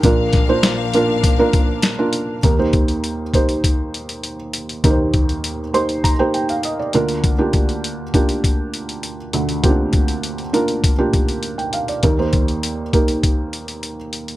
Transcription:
<<
  \new Staff \with { instrumentName = "Felt piano" } { \time 4/4 \key ees \major \tempo 4 = 100 << { r1 | r1 | r4. c'''8 bes''16 g''16 g''16 f''16 ees''16 d''8. | r1 |
r2. r16 g''16 f''16 d''16~ | d''16 r2. r8. | } \\ { <bes d' f' bes'>8. <bes d' f' c''>8. <bes d' f' bes'>8. <bes d' f' bes'>8. r16 <bes d' f' bes'>8. | <bes ees' g' bes'>16 <bes ees' g' c''>4 r16 <bes ees' g' c''>4.~ <bes ees' g' c''>16 r8. | <bes ees' g' bes' c''>4~ <bes ees' g' bes' c''>16 r16 <bes ees' g' c''>8. <bes ees' g' c''>4~ <bes ees' g' c''>16 <bes d' f' bes'>8~ | <bes d' f' bes'>16 <bes d' f' g'>4 r16 <bes d' f' g'>4.~ <bes d' f' g'>16 r8. |
<bes c' d' f' g'>4~ <bes c' d' f' g'>16 r16 <bes d' f' bes'>8. <bes d' f' g'>4. r16 | <bes ees' g' bes'>16 <bes ees' g' c''>4 r16 <bes ees' g' bes'>4.~ <bes ees' g' bes'>16 r8. | } >> }
  \new Staff \with { instrumentName = "Felt piano" } { \clef bass \time 4/4 \key ees \major <bes,, bes,>1 | <ees, ees>1 | <ees, ees>2.~ <ees, ees>8 <d, d>8~ | <d, d>2.~ <d, d>8 <d, d>8~ |
<d, d>2.~ <d, d>8 r8 | <ees, ees>1 | }
  \new Staff \with { instrumentName = "String section" } { \time 4/4 \key ees \major <bes, f d' bes' f''>1 | r1 | r1 | r1 |
r1 | r1 | }
  \new DrumStaff \with { instrumentName = "Drums" } \drummode { \time 4/4 <hh bd>8 <hh bd sn>8 <hh sn>8 hh8 <hh bd>8 <hh bd>8 <hh sn>8 hh8 | <hh bd>8 <hh bd>16 hh16 hh8 <hh bd>16 hh16 <hh bd>8 hh16 hh16 hh8 hh16 hh16 | <hh bd>8 <hh bd>16 hh16 hh8 hh16 hh16 <hh bd>8 hh16 hh16 hh8 hh16 hh16 | <hh bd>8 <hh bd>16 hh16 hh8 <hh bd>16 hh16 <hh bd>8 hh16 hh16 hh8 hh16 hh16 |
<hh bd>8 <hh bd>16 hh16 hh16 hh16 hh16 hh16 <hh bd>8 <hh bd>16 hh16 hh16 hh16 hh16 hh16 | <hh bd>8 <hh bd>16 hh16 hh8 <hh bd>16 hh16 <hh bd>8 hh16 hh16 hh8 hh16 hh16 | }
>>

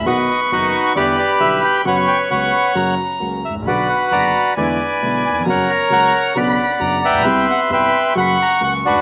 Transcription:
<<
  \new Staff \with { instrumentName = "Violin" } { \time 4/4 \key b \minor \tempo 4 = 133 cis'''2 b''2 | cis'''2 ais''4. r8 | b''2 gis''2 | ais''2 b''4 ais''4 |
c'''2 cis'''2 | }
  \new Staff \with { instrumentName = "Bandoneon" } { \time 4/4 \key b \minor << { fis''8 dis''8 b'4 d''8 d''8 e''8 g''8 | fis''8 g''8 fis''4. r4 e''8 | d''8 fis''8 ais''4 gis''8 r4 gis''8 | fis''8 ais''8 cis'''4 b''8 r4 g''8~ |
g''8 fis''8 g''4 b''8 ais''8 fis''8 b'8 | } \\ { <b' dis''>4 <dis' fis'>4 <g' b'>2 | <b' cis''>4 <b' cis''>4. r4. | <fis' b'>4 <d'' fis''>4 <b' d''>2 | <ais' cis''>4 <fis'' ais''>4 <d'' fis''>4. <b' e''>8~ |
<b' e''>4 <b' e''>4 fis''4. <d' fis'>8 | } >> }
  \new Staff \with { instrumentName = "Grand piano" } { \clef bass \time 4/4 \key b \minor <b,, b, dis fis b fis'>8 r8 <fis,, fis, dis fis b fis'>8 r8 <e, d e g b e'>8 r8 <b,, b, d g b e'>8 r8 | <fis, cis fis b fis'>8 r8 <cis, cis fis b fis'>8 r8 <fis, cis fis ais fis'>8 r8 <cis, cis fis ais fis'>8 r32 gis,,32 a,,32 ais,,32 | <b,, b, d fis b fis'>8 r8 <fis,, fis, d fis b fis'>8 r8 <e, d e gis b e'>8 r8 <b,, b, d gis b e'>8 r32 dis,32 e,32 eis,32 | <fis, cis fis ais fis'>8 r8 <cis, cis fis ais fis'>8 r8 <b,, b, cis fis b d'>8 r8 <fis,, fis, cis fis b d'>8 r32 a,,32 ais,,32 b,,32 |
<c, c g b e'>8 r8 <g,, g, c g b e'>8 r8 <fis, cis fis ais fis'>8 r8 <cis, cis fis ais fis'>8 r32 gis,,32 a,,32 r32 | }
>>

